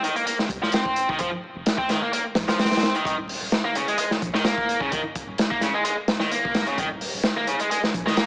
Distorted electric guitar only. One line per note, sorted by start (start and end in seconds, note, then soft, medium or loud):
0.03 0.15 D#3 medium
0.16 0.23 A#3 medium
0.27 0.35 A#3 medium
0.62 0.73 F3 loud
0.73 1.08 C4 loud
1.09 1.19 D#3 loud
1.20 1.28 F3 medium
1.78 1.88 C4 medium
1.90 2.01 D#3 medium
2.02 2.10 A#3 medium
2.13 2.22 A#3 medium
2.48 2.59 F3 loud
2.59 2.94 C4 loud
2.95 3.05 D#3 loud
3.06 3.15 D#3 medium
3.65 3.75 A#3 loud
3.76 3.87 C#3 medium
3.88 3.96 G#3 medium
3.99 4.08 G#3 medium
4.34 4.45 D#3 medium
4.45 4.80 A#3 loud
4.81 4.91 C#3 loud
4.92 5.00 D#3 medium
5.51 5.61 A#3 loud
5.62 5.73 C#3 medium
5.74 5.82 G#3 medium
5.85 5.94 G#3 medium
6.21 6.31 D#3 loud
6.31 6.66 A#3 loud
6.67 6.77 C#3 loud
6.78 6.87 D#3 medium
7.37 7.47 A#3 medium
7.48 7.59 C#3 medium
7.60 7.68 G#3 medium
7.71 7.80 G#3 medium
8.06 8.17 D#3 loud
8.17 8.26 A#3 loud